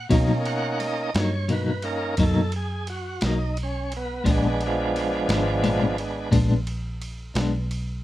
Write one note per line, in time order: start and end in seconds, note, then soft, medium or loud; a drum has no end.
0.10 0.31 B2 medium
0.10 1.11 B2 medium
0.10 0.31 F#3 medium
0.10 0.32 A#3 medium
0.10 1.11 A#3 medium
0.10 1.10 C#4 soft
0.10 0.31 D#4 medium
0.10 1.11 D#4 medium
0.10 kick loud
0.10 ride medium
0.45 0.79 F#5 loud
0.45 ride medium
0.80 1.13 D#5 medium
0.80 snare soft
0.80 ride medium
1.15 2.15 G2 medium
1.15 1.36 F#3 soft
1.15 1.36 A#3 soft
1.15 1.35 D#4 soft
1.15 1.49 C#5 medium
1.15 snare loud
1.15 ride medium
1.48 1.70 B2 medium
1.48 1.70 F#3 medium
1.48 1.70 A#3 medium
1.48 1.71 D#4 medium
1.48 1.84 B4 medium
1.48 ride medium
1.82 2.15 A#3 soft
1.82 2.15 C#4 soft
1.82 2.15 D#4 soft
1.82 2.18 A#4 medium
1.82 ride medium
2.17 3.19 F#2 medium
2.17 2.39 B2 medium
2.17 2.39 F#3 medium
2.17 2.40 A#3 medium
2.17 2.40 D#4 medium
2.17 kick medium
2.17 ride medium
2.22 2.54 A4 medium
2.52 ride medium
2.56 2.88 G#4 medium
2.87 3.22 F#4 medium
2.87 ride medium
3.21 4.22 B1 loud
3.21 3.44 F#3 medium
3.21 3.43 A#3 medium
3.21 3.43 D#4 medium
3.21 snare loud
3.21 ride medium
3.26 3.58 D#4 medium
3.57 ride medium
3.63 3.93 C#4 medium
3.92 ride medium
3.97 4.27 B3 loud
4.24 5.26 A#1 medium
4.24 4.46 A#2 medium
4.24 4.46 G#3 medium
4.24 4.46 B3 medium
4.24 4.46 D4 medium
4.24 kick loud
4.24 ride medium
4.29 4.31 G#3 medium
4.29 4.63 G#3 medium
4.29 5.99 B3 medium
4.29 5.98 D4 medium
4.61 ride medium
4.66 5.98 F3 loud
4.66 5.97 G#3 loud
4.96 snare soft
4.96 ride medium
5.29 6.29 G#1 loud
5.29 5.51 G#3 soft
5.29 5.50 B3 medium
5.29 5.50 D4 soft
5.29 snare loud
5.29 ride medium
5.63 5.84 A#2 medium
5.63 5.84 G#3 medium
5.63 5.84 B3 medium
5.63 5.85 D4 medium
5.63 ride medium
5.98 6.30 G#3 soft
5.98 6.30 B3 soft
5.98 6.30 D4 medium
5.98 ride medium
6.31 7.33 A#1 medium
6.31 6.53 A#2 medium
6.31 6.53 G#3 medium
6.31 6.53 B3 medium
6.31 6.53 D4 loud
6.31 kick medium
6.31 ride medium
6.67 ride medium
7.02 ride medium
7.34 8.04 B1 loud
7.34 7.57 G#3 medium
7.34 7.57 B3 medium
7.34 7.56 D4 medium
7.34 snare loud
7.34 ride medium
7.71 ride medium